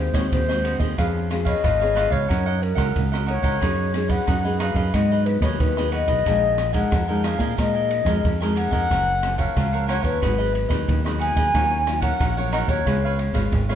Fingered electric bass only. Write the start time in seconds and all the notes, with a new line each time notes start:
0.13 D#2
0.33 D#2
0.79 D#2
0.98 F2
1.64 G#1
2.11 C#2
2.30 F#2
2.76 C#2
2.96 C#2
3.42 C#2
3.62 F#2
4.28 F#2
4.74 F#2
4.94 G#2
5.41 D#2
5.60 D#2
6.07 B1
6.26 A#1
6.92 F2
7.39 A#2
7.58 A#2
8.05 F2
8.25 F2
8.71 F2
8.91 F#1
9.57 C#2
10.03 D#2
10.23 G#1
10.69 D#2
10.89 D#2
11.35 D#2
11.55 D#2
12.20 A#1
12.67 D#2
12.87 C#2
13.33 G#1
13.53 G#1